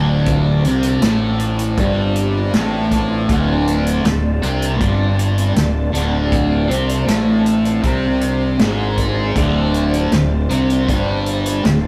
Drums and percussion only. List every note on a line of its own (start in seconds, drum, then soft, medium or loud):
0.26 kick loud
0.26 closed hi-hat medium
0.65 closed hi-hat medium
0.83 closed hi-hat medium
1.02 snare loud
1.02 closed hi-hat medium
1.40 closed hi-hat medium
1.59 closed hi-hat medium
1.77 kick loud
1.77 closed hi-hat medium
2.16 closed hi-hat medium
2.54 snare loud
2.54 closed hi-hat medium
2.91 kick medium
2.91 snare soft
2.91 closed hi-hat medium
3.29 kick loud
3.29 closed hi-hat medium
3.68 closed hi-hat medium
3.87 closed hi-hat medium
4.05 snare loud
4.05 closed hi-hat medium
4.43 closed hi-hat medium
4.62 closed hi-hat medium
4.81 kick loud
4.81 closed hi-hat medium
5.19 closed hi-hat medium
5.38 closed hi-hat medium
5.56 snare loud
5.56 closed hi-hat medium
5.95 closed hi-hat medium
6.32 kick loud
6.32 closed hi-hat medium
6.71 closed hi-hat medium
6.89 closed hi-hat medium
7.08 snare loud
7.08 closed hi-hat medium
7.46 closed hi-hat medium
7.65 closed hi-hat medium
7.84 kick medium
7.84 closed hi-hat medium
8.21 closed hi-hat medium
8.59 snare loud
8.59 closed hi-hat medium
8.97 kick medium
8.97 closed hi-hat medium
9.36 kick loud
9.36 closed hi-hat medium
9.74 closed hi-hat medium
9.94 closed hi-hat medium
10.12 snare loud
10.12 closed hi-hat medium
10.50 closed hi-hat medium
10.70 closed hi-hat medium
10.88 kick loud
10.88 closed hi-hat medium
11.26 closed hi-hat medium
11.46 closed hi-hat medium
11.65 snare loud
11.65 closed hi-hat medium